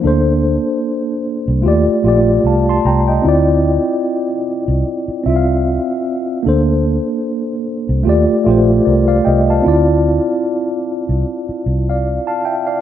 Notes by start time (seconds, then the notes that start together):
0.01 D2 A#3 D4
0.05 A4 C5
1.48 C2
1.62 D#2 A3 F4 G4
1.68 D5
1.88 muted fingered electric bass stroke
2.03 A#1 A3 F4
2.07 G4 D5
2.44 C2 F5 A5
2.69 A5 C6
2.85 C2 G5 A#5
3.08 D#5 G5
3.22 D2 C4 E4
3.27 F4 D5
4.68 C2
5.08 muted fingered electric bass stroke
5.23 C2 C4 E5
5.27 F4 E5
5.36 F5
6.43 D2 A#3 D4
6.47 A4 C5
7.89 C2
8.03 D#2 A3 F4 G4
8.09 D5
8.30 muted fingered electric bass stroke
8.44 A#1 A3 F4 G4
8.51 C5
8.85 C2 A#4 D5
9.08 D5 F5
9.25 C2 D#5 G5
9.50 F5 A5
9.62 C4 E4 F4
9.66 D2 D5
11.09 C2
11.49 muted fingered electric bass stroke
11.66 C2
11.90 D5 F5
12.27 F5 A5
12.45 E5 G5
12.67 D5 F5